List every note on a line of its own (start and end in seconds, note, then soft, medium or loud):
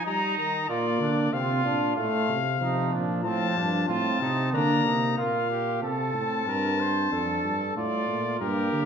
0.06 0.37 G3 medium
0.06 0.68 D#4 medium
0.06 0.37 A#5 medium
0.37 0.68 D#3 medium
0.37 0.71 A#5 medium
0.69 1.02 A#2 medium
0.69 1.31 A#3 medium
0.69 1.00 F4 medium
0.69 1.35 D5 medium
1.00 1.32 D3 medium
1.00 1.32 D4 medium
1.32 1.64 C3 medium
1.32 1.64 C4 medium
1.32 2.31 F4 medium
1.32 1.96 F5 medium
1.64 1.96 A#2 medium
1.64 1.96 D4 medium
1.96 2.28 A2 medium
1.96 2.37 A3 medium
1.96 2.94 F5 medium
2.29 2.60 C3 medium
2.60 2.92 C3 medium
2.60 3.20 F3 medium
2.60 2.94 D#4 medium
2.92 3.27 A#2 medium
2.92 3.24 D4 medium
3.24 3.57 A2 medium
3.24 3.87 F3 loud
3.24 3.56 C4 medium
3.24 3.85 A5 medium
3.57 3.88 G2 medium
3.57 3.88 D4 medium
3.88 4.20 A2 medium
3.88 4.55 C4 medium
3.88 4.20 F4 medium
3.88 4.52 A5 medium
4.21 4.53 C3 medium
4.21 4.52 D#4 medium
4.53 4.85 D3 medium
4.53 5.17 A#3 loud
4.53 4.85 D4 medium
4.53 5.17 A#5 medium
4.85 5.17 C3 medium
4.85 5.20 D#4 medium
5.18 5.81 A#2 medium
5.18 5.81 A#3 medium
5.18 5.50 F4 medium
5.18 5.81 F5 medium
5.50 5.82 G4 medium
5.82 6.13 C3 medium
5.82 7.08 C4 medium
5.82 6.43 A4 medium
5.82 7.73 A5 medium
6.14 6.46 A2 medium
6.46 7.10 G2 medium
6.46 6.82 A#4 medium
6.80 7.12 C5 medium
7.12 7.43 F2 medium
7.12 7.75 D4 medium
7.12 7.75 A4 medium
7.44 7.75 G2 medium
7.76 8.08 A2 medium
7.76 8.39 A3 medium
7.76 8.40 F4 medium
7.76 8.40 D5 medium
8.09 8.40 A#2 medium
8.40 8.72 G2 medium
8.40 8.85 A#3 medium
8.40 8.85 G4 medium
8.40 8.85 A#4 medium
8.72 8.85 D3 medium